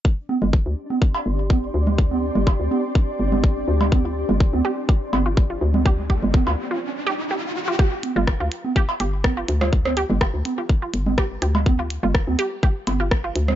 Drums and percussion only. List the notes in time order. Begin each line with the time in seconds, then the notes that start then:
0.05 kick
0.29 high conga
0.42 low conga
0.53 kick
0.90 high conga
1.02 kick
1.14 cowbell
1.50 kick, high conga
1.87 low conga
1.98 kick
2.11 high conga
2.35 low conga
2.47 kick, cowbell
2.71 high conga
2.95 kick
3.32 high conga, low conga
3.44 kick
3.81 cowbell, low conga
3.92 kick, high conga
4.29 low conga
4.40 kick
4.53 high conga
4.89 kick
5.13 cowbell, high conga
5.37 kick
5.74 high conga, low conga
5.86 kick
6.10 kick
6.23 low conga
6.34 kick, high conga
6.47 cowbell
7.79 kick
8.03 closed hi-hat, high conga
8.16 low conga
8.27 kick, cross-stick
8.52 closed hi-hat
8.65 high conga
8.76 kick
8.89 cowbell
9.00 closed hi-hat
9.24 kick, cross-stick, high conga
9.48 closed hi-hat
9.61 cross-stick, low conga
9.73 kick
9.85 cross-stick, high conga
9.97 closed hi-hat
10.10 low conga
10.21 kick, cross-stick, cowbell
10.45 closed hi-hat, high conga
10.69 kick
10.94 closed hi-hat
11.06 high conga, low conga
11.18 kick, cross-stick
11.42 closed hi-hat
11.55 cowbell, low conga
11.66 kick, high conga
11.90 closed hi-hat
12.03 low conga
12.15 kick, cross-stick
12.27 high conga
12.39 closed hi-hat
12.63 kick
12.87 closed hi-hat, cowbell, high conga
13.11 kick, cross-stick
13.36 closed hi-hat
13.48 cross-stick, high conga, low conga